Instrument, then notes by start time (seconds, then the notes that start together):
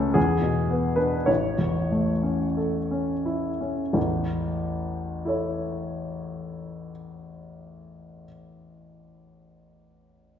grand piano
Already playing: C#2 C#3 A3 C#4 A4
0.14 E2 G#4
0.42 B2
0.70 B3
0.96 D4 B4
1.26 A1 C#5
1.59 E2
1.92 A3
2.23 C#4
2.57 A4
2.91 C#4
3.25 E4
3.61 C#4
3.93 A1 E2
5.25 E4 A4 C#5